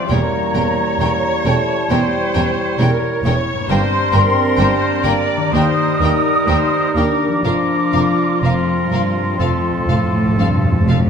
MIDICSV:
0, 0, Header, 1, 13, 480
1, 0, Start_track
1, 0, Tempo, 895522
1, 59, Time_signature, 4, 2, 24, 8
1, 2458, Tempo, 952381
1, 3898, Tempo, 981997
1, 5685, End_track
2, 0, Start_track
2, 0, Title_t, "Flute section"
2, 0, Program_c, 0, 73
2, 0, Note_on_c, 0, 84, 61
2, 54, Note_off_c, 0, 84, 0
2, 56, Note_on_c, 0, 82, 80
2, 778, Note_on_c, 0, 81, 79
2, 786, Note_off_c, 0, 82, 0
2, 1019, Note_off_c, 0, 81, 0
2, 1019, Note_on_c, 0, 79, 73
2, 1502, Note_off_c, 0, 79, 0
2, 1977, Note_on_c, 0, 84, 106
2, 2672, Note_off_c, 0, 84, 0
2, 2699, Note_on_c, 0, 82, 77
2, 2936, Note_on_c, 0, 87, 91
2, 2940, Note_off_c, 0, 82, 0
2, 3652, Note_off_c, 0, 87, 0
2, 3654, Note_on_c, 0, 86, 74
2, 3893, Note_off_c, 0, 86, 0
2, 3899, Note_on_c, 0, 86, 83
2, 4367, Note_off_c, 0, 86, 0
2, 4374, Note_on_c, 0, 84, 65
2, 5574, Note_off_c, 0, 84, 0
2, 5685, End_track
3, 0, Start_track
3, 0, Title_t, "Violin section"
3, 0, Program_c, 1, 48
3, 45, Note_on_c, 1, 79, 48
3, 88, Note_off_c, 1, 79, 0
3, 292, Note_on_c, 1, 79, 46
3, 335, Note_off_c, 1, 79, 0
3, 543, Note_on_c, 1, 79, 47
3, 586, Note_off_c, 1, 79, 0
3, 779, Note_on_c, 1, 79, 51
3, 822, Note_off_c, 1, 79, 0
3, 1018, Note_on_c, 1, 79, 54
3, 1061, Note_off_c, 1, 79, 0
3, 1258, Note_on_c, 1, 79, 53
3, 1301, Note_off_c, 1, 79, 0
3, 1507, Note_on_c, 1, 79, 58
3, 1550, Note_off_c, 1, 79, 0
3, 1742, Note_on_c, 1, 79, 52
3, 1785, Note_off_c, 1, 79, 0
3, 1985, Note_on_c, 1, 79, 55
3, 2028, Note_off_c, 1, 79, 0
3, 2211, Note_on_c, 1, 79, 55
3, 2254, Note_off_c, 1, 79, 0
3, 2450, Note_on_c, 1, 79, 55
3, 2491, Note_off_c, 1, 79, 0
3, 2685, Note_on_c, 1, 79, 56
3, 2726, Note_off_c, 1, 79, 0
3, 2945, Note_on_c, 1, 79, 55
3, 2986, Note_off_c, 1, 79, 0
3, 3186, Note_on_c, 1, 79, 52
3, 3226, Note_off_c, 1, 79, 0
3, 3414, Note_on_c, 1, 79, 52
3, 3454, Note_off_c, 1, 79, 0
3, 3659, Note_on_c, 1, 79, 46
3, 3699, Note_off_c, 1, 79, 0
3, 3898, Note_on_c, 1, 77, 45
3, 3937, Note_off_c, 1, 77, 0
3, 4136, Note_on_c, 1, 77, 44
3, 4175, Note_off_c, 1, 77, 0
3, 4389, Note_on_c, 1, 77, 43
3, 4428, Note_off_c, 1, 77, 0
3, 4629, Note_on_c, 1, 77, 43
3, 4668, Note_off_c, 1, 77, 0
3, 4856, Note_on_c, 1, 77, 46
3, 4895, Note_off_c, 1, 77, 0
3, 5093, Note_on_c, 1, 77, 44
3, 5132, Note_off_c, 1, 77, 0
3, 5342, Note_on_c, 1, 77, 47
3, 5382, Note_off_c, 1, 77, 0
3, 5581, Note_on_c, 1, 77, 42
3, 5620, Note_off_c, 1, 77, 0
3, 5685, End_track
4, 0, Start_track
4, 0, Title_t, "Viola section"
4, 0, Program_c, 2, 48
4, 0, Note_on_c, 2, 74, 61
4, 57, Note_on_c, 2, 73, 53
4, 63, Note_off_c, 2, 74, 0
4, 296, Note_off_c, 2, 73, 0
4, 302, Note_on_c, 2, 73, 73
4, 1015, Note_off_c, 2, 73, 0
4, 1025, Note_on_c, 2, 72, 69
4, 1505, Note_off_c, 2, 72, 0
4, 1511, Note_on_c, 2, 70, 68
4, 1747, Note_on_c, 2, 73, 68
4, 1748, Note_off_c, 2, 70, 0
4, 1979, Note_off_c, 2, 73, 0
4, 1981, Note_on_c, 2, 72, 78
4, 2219, Note_off_c, 2, 72, 0
4, 2221, Note_on_c, 2, 70, 69
4, 2458, Note_on_c, 2, 72, 72
4, 2460, Note_off_c, 2, 70, 0
4, 2694, Note_off_c, 2, 72, 0
4, 2694, Note_on_c, 2, 74, 71
4, 2935, Note_on_c, 2, 72, 66
4, 2937, Note_off_c, 2, 74, 0
4, 3175, Note_off_c, 2, 72, 0
4, 3179, Note_on_c, 2, 70, 66
4, 3406, Note_on_c, 2, 72, 63
4, 3414, Note_off_c, 2, 70, 0
4, 3645, Note_on_c, 2, 70, 58
4, 3649, Note_off_c, 2, 72, 0
4, 3891, Note_off_c, 2, 70, 0
4, 3895, Note_on_c, 2, 65, 59
4, 5554, Note_off_c, 2, 65, 0
4, 5685, End_track
5, 0, Start_track
5, 0, Title_t, "Oboe"
5, 0, Program_c, 3, 68
5, 55, Note_on_c, 3, 73, 49
5, 1894, Note_off_c, 3, 73, 0
5, 1985, Note_on_c, 3, 70, 64
5, 2918, Note_off_c, 3, 70, 0
5, 2938, Note_on_c, 3, 70, 64
5, 3881, Note_off_c, 3, 70, 0
5, 3899, Note_on_c, 3, 70, 54
5, 4364, Note_off_c, 3, 70, 0
5, 4367, Note_on_c, 3, 70, 54
5, 4840, Note_off_c, 3, 70, 0
5, 4851, Note_on_c, 3, 69, 52
5, 5637, Note_off_c, 3, 69, 0
5, 5685, End_track
6, 0, Start_track
6, 0, Title_t, "Violin section"
6, 0, Program_c, 4, 48
6, 53, Note_on_c, 4, 61, 48
6, 55, Note_on_c, 4, 70, 47
6, 96, Note_off_c, 4, 61, 0
6, 98, Note_off_c, 4, 70, 0
6, 300, Note_on_c, 4, 61, 44
6, 300, Note_on_c, 4, 70, 43
6, 343, Note_off_c, 4, 61, 0
6, 343, Note_off_c, 4, 70, 0
6, 541, Note_on_c, 4, 70, 49
6, 544, Note_on_c, 4, 61, 45
6, 584, Note_off_c, 4, 70, 0
6, 587, Note_off_c, 4, 61, 0
6, 777, Note_on_c, 4, 70, 51
6, 778, Note_on_c, 4, 61, 52
6, 820, Note_off_c, 4, 70, 0
6, 821, Note_off_c, 4, 61, 0
6, 1021, Note_on_c, 4, 70, 51
6, 1025, Note_on_c, 4, 61, 54
6, 1064, Note_off_c, 4, 70, 0
6, 1068, Note_off_c, 4, 61, 0
6, 1257, Note_on_c, 4, 61, 51
6, 1259, Note_on_c, 4, 70, 53
6, 1300, Note_off_c, 4, 61, 0
6, 1302, Note_off_c, 4, 70, 0
6, 1488, Note_on_c, 4, 61, 55
6, 1489, Note_on_c, 4, 70, 54
6, 1531, Note_off_c, 4, 61, 0
6, 1532, Note_off_c, 4, 70, 0
6, 1746, Note_on_c, 4, 61, 53
6, 1748, Note_on_c, 4, 70, 52
6, 1788, Note_off_c, 4, 61, 0
6, 1791, Note_off_c, 4, 70, 0
6, 1979, Note_on_c, 4, 58, 62
6, 1980, Note_on_c, 4, 70, 60
6, 2022, Note_off_c, 4, 58, 0
6, 2023, Note_off_c, 4, 70, 0
6, 2210, Note_on_c, 4, 58, 50
6, 2212, Note_on_c, 4, 70, 49
6, 2253, Note_off_c, 4, 58, 0
6, 2255, Note_off_c, 4, 70, 0
6, 2460, Note_on_c, 4, 70, 56
6, 2461, Note_on_c, 4, 58, 59
6, 2501, Note_off_c, 4, 58, 0
6, 2501, Note_off_c, 4, 70, 0
6, 2692, Note_on_c, 4, 58, 53
6, 2692, Note_on_c, 4, 70, 55
6, 2732, Note_off_c, 4, 58, 0
6, 2732, Note_off_c, 4, 70, 0
6, 2935, Note_on_c, 4, 58, 58
6, 2939, Note_on_c, 4, 70, 54
6, 2975, Note_off_c, 4, 58, 0
6, 2979, Note_off_c, 4, 70, 0
6, 3177, Note_on_c, 4, 70, 49
6, 3182, Note_on_c, 4, 58, 50
6, 3217, Note_off_c, 4, 70, 0
6, 3222, Note_off_c, 4, 58, 0
6, 3416, Note_on_c, 4, 58, 50
6, 3418, Note_on_c, 4, 70, 51
6, 3456, Note_off_c, 4, 58, 0
6, 3458, Note_off_c, 4, 70, 0
6, 3659, Note_on_c, 4, 58, 42
6, 3660, Note_on_c, 4, 70, 42
6, 3699, Note_off_c, 4, 58, 0
6, 3700, Note_off_c, 4, 70, 0
6, 3901, Note_on_c, 4, 58, 49
6, 3904, Note_on_c, 4, 70, 47
6, 3940, Note_off_c, 4, 58, 0
6, 3943, Note_off_c, 4, 70, 0
6, 4147, Note_on_c, 4, 58, 42
6, 4147, Note_on_c, 4, 70, 44
6, 4186, Note_off_c, 4, 58, 0
6, 4186, Note_off_c, 4, 70, 0
6, 4381, Note_on_c, 4, 58, 46
6, 4384, Note_on_c, 4, 70, 44
6, 4421, Note_off_c, 4, 58, 0
6, 4423, Note_off_c, 4, 70, 0
6, 4622, Note_on_c, 4, 70, 44
6, 4624, Note_on_c, 4, 58, 45
6, 4661, Note_off_c, 4, 70, 0
6, 4663, Note_off_c, 4, 58, 0
6, 4857, Note_on_c, 4, 60, 46
6, 4857, Note_on_c, 4, 69, 49
6, 4896, Note_off_c, 4, 60, 0
6, 4896, Note_off_c, 4, 69, 0
6, 5101, Note_on_c, 4, 69, 44
6, 5102, Note_on_c, 4, 60, 41
6, 5140, Note_off_c, 4, 69, 0
6, 5141, Note_off_c, 4, 60, 0
6, 5339, Note_on_c, 4, 60, 44
6, 5339, Note_on_c, 4, 69, 43
6, 5378, Note_off_c, 4, 60, 0
6, 5379, Note_off_c, 4, 69, 0
6, 5582, Note_on_c, 4, 69, 42
6, 5584, Note_on_c, 4, 60, 40
6, 5621, Note_off_c, 4, 69, 0
6, 5623, Note_off_c, 4, 60, 0
6, 5685, End_track
7, 0, Start_track
7, 0, Title_t, "Clarinet"
7, 0, Program_c, 5, 71
7, 59, Note_on_c, 5, 64, 52
7, 1896, Note_off_c, 5, 64, 0
7, 1987, Note_on_c, 5, 62, 71
7, 2939, Note_on_c, 5, 63, 63
7, 2946, Note_off_c, 5, 62, 0
7, 3893, Note_off_c, 5, 63, 0
7, 3896, Note_on_c, 5, 65, 53
7, 4365, Note_off_c, 5, 65, 0
7, 4376, Note_on_c, 5, 65, 50
7, 4770, Note_off_c, 5, 65, 0
7, 4853, Note_on_c, 5, 65, 53
7, 5638, Note_off_c, 5, 65, 0
7, 5685, End_track
8, 0, Start_track
8, 0, Title_t, "Harp"
8, 0, Program_c, 6, 46
8, 0, Note_on_c, 6, 40, 47
8, 0, Note_on_c, 6, 55, 39
8, 0, Note_on_c, 6, 60, 29
8, 0, Note_on_c, 6, 65, 28
8, 6, Note_on_c, 6, 61, 39
8, 33, Note_on_c, 6, 67, 37
8, 57, Note_off_c, 6, 60, 0
8, 70, Note_off_c, 6, 65, 0
8, 1891, Note_on_c, 6, 43, 52
8, 1912, Note_on_c, 6, 58, 46
8, 1938, Note_on_c, 6, 62, 45
8, 1952, Note_off_c, 6, 40, 0
8, 1956, Note_off_c, 6, 67, 0
8, 1963, Note_on_c, 6, 67, 48
8, 1976, Note_off_c, 6, 61, 0
8, 2074, Note_off_c, 6, 55, 0
8, 2851, Note_on_c, 6, 51, 56
8, 2866, Note_off_c, 6, 58, 0
8, 2872, Note_on_c, 6, 58, 46
8, 2890, Note_off_c, 6, 67, 0
8, 2896, Note_on_c, 6, 67, 45
8, 2914, Note_off_c, 6, 43, 0
8, 2918, Note_on_c, 6, 70, 48
8, 2936, Note_off_c, 6, 62, 0
8, 3816, Note_on_c, 6, 53, 44
8, 3830, Note_off_c, 6, 58, 0
8, 3836, Note_on_c, 6, 58, 37
8, 3860, Note_on_c, 6, 65, 38
8, 3876, Note_off_c, 6, 70, 0
8, 3877, Note_off_c, 6, 51, 0
8, 3882, Note_on_c, 6, 70, 37
8, 3899, Note_off_c, 6, 67, 0
8, 4762, Note_off_c, 6, 53, 0
8, 4768, Note_on_c, 6, 53, 46
8, 4792, Note_on_c, 6, 57, 38
8, 4806, Note_off_c, 6, 65, 0
8, 4812, Note_on_c, 6, 65, 37
8, 4836, Note_on_c, 6, 72, 37
8, 4843, Note_off_c, 6, 58, 0
8, 4865, Note_off_c, 6, 70, 0
8, 5685, Note_off_c, 6, 53, 0
8, 5685, Note_off_c, 6, 57, 0
8, 5685, Note_off_c, 6, 65, 0
8, 5685, Note_off_c, 6, 72, 0
8, 5685, End_track
9, 0, Start_track
9, 0, Title_t, "French horn section"
9, 0, Program_c, 7, 60
9, 0, Note_on_c, 7, 60, 46
9, 56, Note_off_c, 7, 60, 0
9, 65, Note_on_c, 7, 58, 72
9, 776, Note_off_c, 7, 58, 0
9, 789, Note_on_c, 7, 57, 59
9, 959, Note_off_c, 7, 57, 0
9, 1031, Note_on_c, 7, 55, 68
9, 1499, Note_off_c, 7, 55, 0
9, 1979, Note_on_c, 7, 60, 86
9, 2673, Note_off_c, 7, 60, 0
9, 2696, Note_on_c, 7, 58, 64
9, 2936, Note_on_c, 7, 63, 84
9, 2938, Note_off_c, 7, 58, 0
9, 3638, Note_off_c, 7, 63, 0
9, 3647, Note_on_c, 7, 62, 62
9, 3895, Note_off_c, 7, 62, 0
9, 3901, Note_on_c, 7, 62, 69
9, 4368, Note_off_c, 7, 62, 0
9, 4384, Note_on_c, 7, 60, 53
9, 5579, Note_off_c, 7, 60, 0
9, 5685, End_track
10, 0, Start_track
10, 0, Title_t, "Bassoon"
10, 0, Program_c, 8, 70
10, 0, Note_on_c, 8, 53, 40
10, 51, Note_on_c, 8, 55, 48
10, 59, Note_off_c, 8, 53, 0
10, 1886, Note_off_c, 8, 55, 0
10, 1978, Note_on_c, 8, 55, 61
10, 2915, Note_off_c, 8, 55, 0
10, 2932, Note_on_c, 8, 55, 62
10, 3898, Note_on_c, 8, 53, 49
10, 3905, Note_off_c, 8, 55, 0
10, 4376, Note_off_c, 8, 53, 0
10, 4378, Note_on_c, 8, 53, 52
10, 4842, Note_off_c, 8, 53, 0
10, 4845, Note_on_c, 8, 53, 51
10, 5634, Note_off_c, 8, 53, 0
10, 5685, End_track
11, 0, Start_track
11, 0, Title_t, "Timpani"
11, 0, Program_c, 10, 47
11, 4854, Note_on_c, 10, 41, 30
11, 4886, Note_off_c, 10, 41, 0
11, 4892, Note_on_c, 10, 41, 31
11, 4922, Note_off_c, 10, 41, 0
11, 4928, Note_on_c, 10, 41, 31
11, 4965, Note_off_c, 10, 41, 0
11, 4974, Note_on_c, 10, 41, 32
11, 5001, Note_off_c, 10, 41, 0
11, 5007, Note_on_c, 10, 41, 34
11, 5036, Note_off_c, 10, 41, 0
11, 5042, Note_on_c, 10, 41, 35
11, 5071, Note_off_c, 10, 41, 0
11, 5077, Note_on_c, 10, 41, 34
11, 5111, Note_off_c, 10, 41, 0
11, 5117, Note_on_c, 10, 41, 38
11, 5154, Note_off_c, 10, 41, 0
11, 5160, Note_on_c, 10, 41, 41
11, 5189, Note_off_c, 10, 41, 0
11, 5195, Note_on_c, 10, 41, 41
11, 5231, Note_off_c, 10, 41, 0
11, 5237, Note_on_c, 10, 41, 45
11, 5271, Note_off_c, 10, 41, 0
11, 5276, Note_on_c, 10, 41, 47
11, 5310, Note_off_c, 10, 41, 0
11, 5318, Note_on_c, 10, 41, 51
11, 5347, Note_off_c, 10, 41, 0
11, 5353, Note_on_c, 10, 41, 50
11, 5383, Note_off_c, 10, 41, 0
11, 5388, Note_on_c, 10, 41, 57
11, 5418, Note_off_c, 10, 41, 0
11, 5424, Note_on_c, 10, 41, 54
11, 5457, Note_off_c, 10, 41, 0
11, 5463, Note_on_c, 10, 41, 61
11, 5497, Note_off_c, 10, 41, 0
11, 5503, Note_on_c, 10, 41, 66
11, 5541, Note_off_c, 10, 41, 0
11, 5548, Note_on_c, 10, 41, 74
11, 5584, Note_off_c, 10, 41, 0
11, 5590, Note_on_c, 10, 41, 70
11, 5625, Note_off_c, 10, 41, 0
11, 5632, Note_on_c, 10, 41, 69
11, 5664, Note_off_c, 10, 41, 0
11, 5669, Note_on_c, 10, 41, 76
11, 5685, Note_off_c, 10, 41, 0
11, 5685, End_track
12, 0, Start_track
12, 0, Title_t, "Cello section"
12, 0, Program_c, 11, 48
12, 56, Note_on_c, 11, 40, 56
12, 99, Note_off_c, 11, 40, 0
12, 296, Note_on_c, 11, 40, 51
12, 339, Note_off_c, 11, 40, 0
12, 535, Note_on_c, 11, 40, 49
12, 578, Note_off_c, 11, 40, 0
12, 776, Note_on_c, 11, 40, 53
12, 819, Note_off_c, 11, 40, 0
12, 1025, Note_on_c, 11, 40, 63
12, 1067, Note_off_c, 11, 40, 0
12, 1266, Note_on_c, 11, 40, 55
12, 1308, Note_off_c, 11, 40, 0
12, 1500, Note_on_c, 11, 40, 61
12, 1543, Note_off_c, 11, 40, 0
12, 1742, Note_on_c, 11, 40, 62
12, 1785, Note_off_c, 11, 40, 0
12, 1983, Note_on_c, 11, 43, 65
12, 2026, Note_off_c, 11, 43, 0
12, 2214, Note_on_c, 11, 43, 64
12, 2257, Note_off_c, 11, 43, 0
12, 2461, Note_on_c, 11, 43, 63
12, 2501, Note_off_c, 11, 43, 0
12, 2695, Note_on_c, 11, 43, 58
12, 2735, Note_off_c, 11, 43, 0
12, 2936, Note_on_c, 11, 39, 64
12, 2977, Note_off_c, 11, 39, 0
12, 3178, Note_on_c, 11, 39, 57
12, 3218, Note_off_c, 11, 39, 0
12, 3412, Note_on_c, 11, 39, 58
12, 3452, Note_off_c, 11, 39, 0
12, 3653, Note_on_c, 11, 39, 52
12, 3693, Note_off_c, 11, 39, 0
12, 3904, Note_on_c, 11, 41, 55
12, 3943, Note_off_c, 11, 41, 0
12, 4139, Note_on_c, 11, 41, 52
12, 4178, Note_off_c, 11, 41, 0
12, 4374, Note_on_c, 11, 41, 50
12, 4597, Note_off_c, 11, 41, 0
12, 4615, Note_on_c, 11, 43, 52
12, 4854, Note_on_c, 11, 41, 56
12, 4855, Note_off_c, 11, 43, 0
12, 5092, Note_off_c, 11, 41, 0
12, 5098, Note_on_c, 11, 45, 57
12, 5329, Note_on_c, 11, 43, 60
12, 5333, Note_off_c, 11, 45, 0
12, 5573, Note_on_c, 11, 41, 56
12, 5575, Note_off_c, 11, 43, 0
12, 5685, Note_off_c, 11, 41, 0
12, 5685, End_track
13, 0, Start_track
13, 0, Title_t, "Double bass section"
13, 0, Program_c, 12, 48
13, 53, Note_on_c, 12, 28, 53
13, 96, Note_off_c, 12, 28, 0
13, 291, Note_on_c, 12, 28, 48
13, 334, Note_off_c, 12, 28, 0
13, 538, Note_on_c, 12, 28, 54
13, 581, Note_off_c, 12, 28, 0
13, 782, Note_on_c, 12, 28, 55
13, 825, Note_off_c, 12, 28, 0
13, 1022, Note_on_c, 12, 28, 55
13, 1065, Note_off_c, 12, 28, 0
13, 1260, Note_on_c, 12, 28, 57
13, 1303, Note_off_c, 12, 28, 0
13, 1503, Note_on_c, 12, 28, 62
13, 1546, Note_off_c, 12, 28, 0
13, 1736, Note_on_c, 12, 28, 66
13, 1779, Note_off_c, 12, 28, 0
13, 1987, Note_on_c, 12, 31, 70
13, 2030, Note_off_c, 12, 31, 0
13, 2220, Note_on_c, 12, 31, 59
13, 2263, Note_off_c, 12, 31, 0
13, 2456, Note_on_c, 12, 31, 63
13, 2497, Note_off_c, 12, 31, 0
13, 2694, Note_on_c, 12, 31, 58
13, 2734, Note_off_c, 12, 31, 0
13, 2937, Note_on_c, 12, 39, 61
13, 2977, Note_off_c, 12, 39, 0
13, 3179, Note_on_c, 12, 39, 58
13, 3219, Note_off_c, 12, 39, 0
13, 3415, Note_on_c, 12, 39, 57
13, 3456, Note_off_c, 12, 39, 0
13, 3658, Note_on_c, 12, 39, 55
13, 3699, Note_off_c, 12, 39, 0
13, 3900, Note_on_c, 12, 29, 54
13, 3939, Note_off_c, 12, 29, 0
13, 4141, Note_on_c, 12, 29, 47
13, 4180, Note_off_c, 12, 29, 0
13, 4377, Note_on_c, 12, 29, 52
13, 4416, Note_off_c, 12, 29, 0
13, 4614, Note_on_c, 12, 29, 49
13, 4653, Note_off_c, 12, 29, 0
13, 4851, Note_on_c, 12, 29, 48
13, 4890, Note_off_c, 12, 29, 0
13, 5089, Note_on_c, 12, 29, 49
13, 5128, Note_off_c, 12, 29, 0
13, 5332, Note_on_c, 12, 29, 50
13, 5371, Note_off_c, 12, 29, 0
13, 5572, Note_on_c, 12, 29, 50
13, 5611, Note_off_c, 12, 29, 0
13, 5685, End_track
0, 0, End_of_file